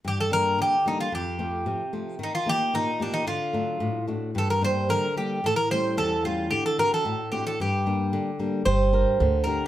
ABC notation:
X:1
M:2/4
L:1/16
Q:1/4=111
K:Gm
V:1 name="Bouzouki"
G A B2 G2 E F | G6 z2 | E F G2 E2 D E | F6 z2 |
A B c2 B2 G2 | A B c2 A2 F2 | G A B A3 G A | G6 z2 |
c6 B2 |]
V:2 name="Nylon-string guitar"
G,,2 [G,B,D]2 D,2 [G,B,D]2 | F,,2 [F,A,C]2 C,2 [F,A,C]2 | E,2 [B,EG]2 B,,2 [B,EG]2 | D,2 [^F,A,D]2 A,,2 [A,D^F]2 |
G,,2 [G,B,D]2 D,2 [G,B,D]2 | A,,2 [G,A,^C]2 =E,,2 [G,A,C]2 | D,2 [CD^F]2 A,,2 [CDF]2 | G,,2 [G,B,D]2 D,2 [G,B,D]2 |
G,2 [DGB]2 D,2 [DGB]2 |]
V:3 name="Upright bass" clef=bass
z8 | z8 | z8 | z8 |
z8 | z8 | z8 | z8 |
G,,,4 D,,4 |]